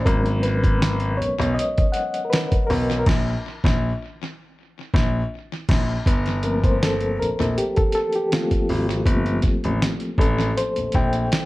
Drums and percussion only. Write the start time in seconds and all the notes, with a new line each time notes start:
0.06 kick, closed hi-hat
0.26 closed hi-hat
0.43 closed hi-hat
0.64 kick, closed hi-hat
0.82 snare, closed hi-hat
1.00 closed hi-hat
1.22 closed hi-hat
1.42 closed hi-hat
1.59 closed hi-hat
1.78 kick, closed hi-hat
1.94 closed hi-hat
2.14 closed hi-hat
2.33 snare, closed hi-hat
2.52 kick, closed hi-hat
2.70 snare, open hi-hat
2.92 closed hi-hat
3.06 kick, snare, crash
3.64 kick, snare
4.94 kick, snare
5.69 kick, snare, crash
6.06 kick, closed hi-hat
6.26 closed hi-hat
6.43 closed hi-hat
6.64 kick, closed hi-hat
6.83 snare, closed hi-hat
7.01 closed hi-hat
7.22 closed hi-hat
7.42 closed hi-hat
7.58 closed hi-hat
7.76 kick, closed hi-hat
7.92 closed hi-hat
8.13 closed hi-hat
8.32 snare, closed hi-hat
8.51 kick, closed hi-hat
8.69 snare, open hi-hat
8.91 closed hi-hat
9.06 kick, closed hi-hat
9.26 closed hi-hat
9.42 kick, closed hi-hat
9.64 closed hi-hat
9.82 snare, closed hi-hat
10.00 closed hi-hat
10.18 kick, closed hi-hat
10.41 closed hi-hat
10.58 closed hi-hat
10.76 closed hi-hat
10.92 kick, closed hi-hat
11.13 closed hi-hat
11.32 snare, closed hi-hat